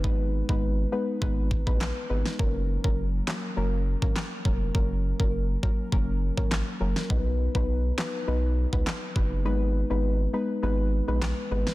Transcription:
<<
  \new Staff \with { instrumentName = "Synth pluck" } { \time 4/4 \key fis \major \tempo 4 = 102 <gis b dis' b'>16 r8 <gis b dis' b'>16 r8 <gis b dis' b'>16 r16 <gis b dis' b'>16 r8 <gis b dis' b'>16 r8 <gis b dis' b'>16 r16 | <fis ais cis' ais'>16 r8 <fis ais cis' ais'>16 r8 <fis ais cis' ais'>16 r16 <fis ais cis' ais'>16 r8 <fis ais cis' ais'>16 r8 <fis ais cis' ais'>16 r16 | <fis ais cis' ais'>16 r8 <fis ais cis' ais'>16 r8 <fis ais cis' ais'>16 r16 <fis ais cis' ais'>16 r8 <fis ais cis' ais'>16 r8 <fis ais cis' ais'>16 r16 | <fis b dis' b'>16 r8 <fis b dis' b'>16 r8 <fis b dis' b'>16 r16 <fis b dis' b'>16 r8 <fis b dis' b'>16 r8 <fis b dis' b'>16 r16 |
<gis b dis' b'>16 r8 <gis b dis' b'>16 r8 <gis b dis' b'>16 r16 <gis b dis' b'>16 r8 <gis b dis' b'>16 r8 <gis b dis' b'>16 r16 | }
  \new Staff \with { instrumentName = "Sub bass" } { \clef bass \time 4/4 \key fis \major gis,,8. gis,,8. r8 gis,,8. ais,,8 r16 gis,,16 r16 | fis,,8. fis,,8. r8 fis,,8. gis,,16 r8 eis,,8 | fis,,8. fis,,8. r8 fis,,8. gis,,8 r16 fis,,16 r16 | b,,8. b,,8. r8 b,,8. cis,16 r8 fis,,8 |
gis,,8. gis,,8. r8 gis,,8. ais,,8 r16 gis,,16 r16 | }
  \new DrumStaff \with { instrumentName = "Drums" } \drummode { \time 4/4 bd8. bd16 r4 bd8 bd16 bd16 <hc sn>8. sn16 | bd8. bd16 r8 <hc sn>8 r8. bd16 <hc sn>8 bd8 | bd8. bd16 r8 bd8 bd8. bd16 <hc sn>8. sn16 | bd8. bd16 r8 <hc sn>8 r8. bd16 <hc sn>8 bd8 |
r4 r4 r4 <hc sn>8. sn16 | }
>>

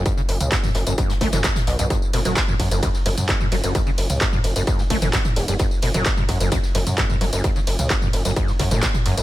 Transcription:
<<
  \new Staff \with { instrumentName = "Acid bass" } { \clef bass \time 4/4 \key fis \phrygian \tempo 4 = 130 r16 cis16 r8 fis,16 fis,16 r16 fis,16 fis,16 a,16 a16 e16 fis,16 r8 fis,16 | fis,16 r16 b,16 fis16 r16 fis,16 r16 fis,16 fis,16 r16 fis,16 r16 g,16 fis,16 fis16 fis,16 | fis,16 cis16 r8 fis,16 fis,16 r16 fis,16 fis,16 a,16 a16 e16 fis,16 r8 fis,16 | fis,16 r16 b,16 fis16 r16 fis,16 r16 fis,16 fis,16 r16 fis,16 r16 g,16 fis,16 fis16 fis,16 |
fis,16 cis16 r8 fis,16 fis,16 r16 fis,16 fis,16 a,16 cis16 a,16 b,16 r16 fis,,16 fis,,16 | }
  \new Staff \with { instrumentName = "Analog synth bass" } { \clef bass \time 4/4 \key fis \phrygian r8 fis,,16 cis,16 r8 fis,,16 fis,,16 r8 fis,,16 fis,,16 r8 b,,16 b,,16 | r8 fis,,16 fis,,16 r8 fis,16 fis,,16 r8 fis,,16 fis,16 r8 fis,,16 fis,,16 | r8 fis,,16 cis,16 r8 fis,,16 fis,,16 r8 fis,,16 fis,,16 r8 e,,16 e,,16 | r8 fis,,16 fis,,16 r8 fis,16 fis,,16 r8 fis,,16 fis,16 r8 fis,,16 fis,,16 |
r8 fis,,16 cis,16 r8 fis,,16 fis,,16 r8 fis,16 fis,,16 r8 fis,16 fis,,16 | }
  \new DrumStaff \with { instrumentName = "Drums" } \drummode { \time 4/4 <hh bd tamb>16 <hh tamb>16 <hh hho>16 <hh tamb toml>16 <hc hh bd sn tamb>16 <hho tamb toml>16 <hh hho sn>16 <hh tamb>16 <hh bd tamb>16 <hh sn tamb>16 <hh hho bd sn>16 <hh sn tamb toml>16 <hc hh bd sn tamb>16 <hh sn tamb toml>16 <hh hho sn>16 <hh tamb>16 | <hh bd tamb>16 tamb16 <hh hho cymr>16 <hh tamb toml>16 <hc hh bd sn tamb>16 <tamb toml>16 <hh hho bd cymr>16 <hh tamb>16 <hh bd tamb>16 <sn tamb>16 <hh hho cymr>16 <hh tamb toml>16 <hc hh bd sn tamb>16 <tamb toml>16 <hh hho cymr>16 <hh tamb>16 | <hh bd tamb>16 <hh tamb>16 <hh hho cymr>16 <hh tamb toml>16 <hc hh bd sn tamb>16 <tamb toml>16 <hh hho cymr>16 <hh tamb>16 <hh bd tamb>16 <sn tamb>16 <hh hho bd cymr>16 <hh tamb toml>16 <hc hh bd sn tamb>16 <hh tamb toml>16 <hh hho cymr>16 <hh tamb>16 | <hh bd tamb>16 tamb16 <hh hho cymr>16 <hh tamb toml>16 <hc hh bd sn tamb>16 <tamb toml>16 <hh hho bd cymr>16 <hh tamb>16 <hh bd tamb>16 <sn tamb>16 <hh hho cymr>16 <hh tamb toml>16 <hc hh bd sn tamb>16 <tamb toml>16 <hho cymr>16 <hh tamb>16 |
<hh bd tamb>16 <hh tamb>16 <hh hho cymr>16 <hh tamb toml>16 <hc hh bd sn tamb>16 <tamb toml>16 <hh hho cymr>16 <hh tamb>16 <hh bd tamb>16 <sn tamb>16 <hh hho bd cymr>16 <hh tamb toml>16 <hc hh bd sn tamb>16 <hh tamb toml>16 <hh hho cymr>16 <hh tamb>16 | }
>>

